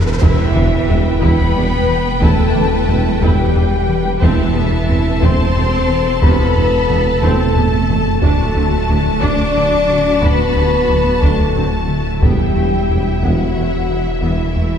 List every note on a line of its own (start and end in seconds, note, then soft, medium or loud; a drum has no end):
0.00 0.18 E1 medium
0.00 riser medium
0.21 4.18 E1 medium
0.21 0.36 E1 medium
0.21 0.30 E2 medium
0.21 0.43 E2 medium
0.21 0.42 E3 medium
0.21 1.18 E3 medium
0.21 0.53 E4 medium
0.21 1.18 E4 medium
0.21 5.18 B4 medium
0.21 1.18 E5 medium
0.21 4.18 G5 medium
0.21 taiko medium
0.21 impact medium
0.54 0.69 E1 soft
0.54 0.63 E2 soft
0.54 0.76 E2 medium
0.54 0.62 D4 medium
0.54 0.75 E4 medium
0.54 taiko mid soft
0.88 1.02 E1 medium
0.88 0.97 E2 medium
0.88 1.09 E2 medium
0.88 1.09 G3 medium
0.88 0.96 E4 soft
1.20 1.34 E1 medium
1.20 1.42 E2 medium
1.20 1.31 E2 medium
1.20 1.42 E3 medium
1.20 2.22 B3 medium
1.20 1.53 E4 medium
1.20 2.21 B4 medium
1.20 2.20 B5 medium
1.20 taiko medium
1.54 1.69 E1 soft
1.54 1.63 E2 soft
1.54 1.76 E2 medium
1.54 1.75 G3 medium
1.54 1.62 D4 medium
1.89 2.09 E3 medium
2.21 2.35 E1 medium
2.21 2.42 E2 medium
2.21 2.30 E2 medium
2.21 2.42 E3 medium
2.21 3.20 A3 medium
2.21 2.53 E4 medium
2.21 3.20 A4 medium
2.21 3.21 A5 medium
2.21 taiko medium
2.54 2.69 E1 soft
2.54 2.75 E2 medium
2.54 2.63 E2 soft
2.54 2.62 D4 medium
2.54 2.75 E4 medium
2.54 taiko mid soft
2.88 3.02 E1 soft
2.88 3.09 E2 medium
2.88 2.98 E2 medium
2.88 3.08 G3 medium
2.88 2.96 E4 soft
3.21 3.36 E1 medium
3.21 3.42 E2 medium
3.21 3.31 E2 medium
3.21 3.42 E3 medium
3.21 4.22 G3 medium
3.21 3.53 E4 medium
3.21 4.22 G4 medium
3.21 4.22 G5 medium
3.21 taiko medium
3.55 3.69 E1 soft
3.55 3.76 E2 medium
3.55 3.65 E2 soft
3.55 3.76 G3 medium
3.55 3.63 D4 medium
3.89 4.09 E3 medium
4.21 8.25 E1 medium
4.21 4.36 E1 medium
4.21 4.42 E2 medium
4.21 4.30 E2 medium
4.21 5.22 E3 medium
4.21 4.42 A3 medium
4.21 4.53 C4 medium
4.21 5.20 E4 medium
4.21 5.20 E5 medium
4.21 8.18 A5 medium
4.21 taiko medium
4.55 4.69 E1 medium
4.55 4.76 E2 medium
4.55 4.64 E2 soft
4.55 4.64 B3 soft
4.55 4.75 A4 medium
4.89 5.03 E1 soft
4.89 4.97 E2 medium
4.89 5.09 E2 medium
4.89 4.97 C4 medium
4.89 5.09 C4 medium
5.22 5.36 E1 medium
5.22 5.42 E2 medium
5.22 5.31 E2 medium
5.22 5.42 A3 medium
5.22 5.53 C4 medium
5.22 6.23 C4 medium
5.22 8.22 A4 medium
5.22 6.22 C5 medium
5.22 6.22 C6 medium
5.22 taiko medium
5.55 5.70 E1 medium
5.55 5.64 E2 medium
5.55 5.76 E2 medium
5.55 5.75 C4 medium
5.55 5.64 C4 medium
5.90 6.09 E3 medium
6.22 6.36 E1 medium
6.22 6.31 E2 medium
6.22 6.43 E2 medium
6.22 6.53 C3 medium
6.22 6.42 A3 medium
6.22 7.20 B3 medium
6.22 7.20 B4 medium
6.22 7.20 B5 medium
6.22 taiko medium
6.56 6.69 E1 medium
6.56 6.64 E2 soft
6.56 6.76 E2 medium
6.56 6.64 B3 soft
6.56 6.76 A4 medium
6.89 7.02 E1 medium
6.89 6.97 E2 medium
6.89 7.09 E2 medium
6.89 7.09 C3 medium
6.89 6.98 C3 soft
7.21 7.36 E1 medium
7.21 7.30 E2 medium
7.21 7.43 E2 medium
7.21 7.42 A3 medium
7.21 8.21 A3 medium
7.21 7.53 C4 medium
7.21 8.20 A4 medium
7.21 8.21 A5 medium
7.21 taiko mid medium
7.56 7.70 E1 soft
7.56 7.64 E2 medium
7.56 7.76 E2 medium
7.56 7.64 B3 medium
7.56 7.76 C4 medium
7.56 taiko low-mid medium
7.90 8.10 E3 medium
7.90 taiko low medium
8.22 12.25 D1 medium
8.22 8.30 D2 medium
8.22 8.36 D2 medium
8.22 8.43 D2 medium
8.22 8.42 D3 medium
8.22 9.20 A3 medium
8.22 8.54 D4 medium
8.22 12.19 F#4 medium
8.22 9.05 A4 medium
8.22 9.20 A5 medium
8.22 12.19 A5 medium
8.22 taiko medium
8.55 8.76 D2 medium
8.55 8.64 D2 soft
8.55 8.70 D2 soft
8.55 8.64 C4 soft
8.55 8.75 D4 medium
8.89 9.09 D2 medium
8.89 8.97 D2 medium
8.89 9.03 D2 soft
8.89 9.09 F#3 medium
8.89 8.98 D4 soft
9.21 9.36 D2 medium
9.21 9.31 D2 medium
9.21 9.43 D2 medium
9.21 9.42 D3 medium
9.21 9.53 D4 medium
9.21 10.22 D4 medium
9.21 10.20 D5 medium
9.21 10.23 D6 medium
9.21 taiko medium
9.55 9.76 D2 medium
9.55 9.69 D2 soft
9.55 9.64 D2 soft
9.55 9.75 F#3 medium
9.55 9.63 C4 medium
9.89 10.09 D3 medium
10.21 10.43 D2 medium
10.21 10.36 D2 medium
10.21 10.31 D2 medium
10.21 10.42 D3 medium
10.21 11.21 B3 medium
10.21 10.53 D4 medium
10.21 11.22 B4 medium
10.21 11.22 B5 medium
10.21 taiko medium
10.55 10.76 D2 medium
10.55 10.70 D2 soft
10.55 10.66 D2 soft
10.55 10.63 C3 soft
10.55 10.76 D4 medium
10.88 11.09 D2 medium
10.88 11.03 D2 soft
10.88 10.99 D2 soft
10.88 11.09 F#3 medium
10.88 10.96 D4 soft
11.22 11.42 D2 medium
11.22 11.36 D2 medium
11.22 11.31 D2 medium
11.22 11.43 D3 medium
11.22 12.21 A3 medium
11.22 11.53 D4 medium
11.22 12.22 A4 medium
11.22 12.23 A5 medium
11.22 taiko medium
11.56 11.76 D2 medium
11.56 11.70 D2 soft
11.56 11.65 D2 soft
11.56 11.76 F#3 medium
11.56 11.64 C4 medium
11.89 12.09 D3 soft
12.22 12.36 E1 medium
12.22 14.78 E1 medium
12.22 12.42 E2 medium
12.22 12.31 E2 medium
12.22 12.42 E3 medium
12.22 13.21 G3 medium
12.22 12.53 B3 soft
12.22 14.78 E4 soft
12.22 13.20 G4 medium
12.22 14.78 E5 medium
12.22 13.23 G5 medium
12.22 taiko medium
12.56 12.69 E1 soft
12.56 12.76 E2 soft
12.56 12.65 E2 soft
12.56 12.64 A3 soft
12.56 12.76 E4 medium
12.89 13.03 E1 soft
12.89 13.09 E2 medium
12.89 12.98 E2 soft
12.89 13.09 G3 soft
12.89 12.98 B3 soft
13.22 13.36 E1 medium
13.22 13.42 E2 medium
13.22 13.31 E2 medium
13.22 13.42 E3 medium
13.22 14.21 F#3 soft
13.22 13.54 B3 soft
13.22 14.23 F#4 medium
13.22 14.23 F#5 soft
13.22 taiko medium
13.55 13.70 E1 soft
13.55 13.75 E2 medium
13.55 13.64 E2 soft
13.55 13.76 E3 medium
13.55 13.64 A3 soft
13.90 14.09 E3 soft
14.21 14.36 E1 soft
14.21 14.42 E2 medium
14.21 14.30 E2 soft
14.21 14.42 E3 medium
14.21 14.78 E3 soft
14.21 14.53 B3 soft
14.21 14.78 E4 soft
14.21 14.78 E5 soft
14.55 14.70 E1 soft
14.55 14.76 E2 soft
14.55 14.64 E2 soft
14.55 14.63 A3 soft
14.55 14.76 E4 soft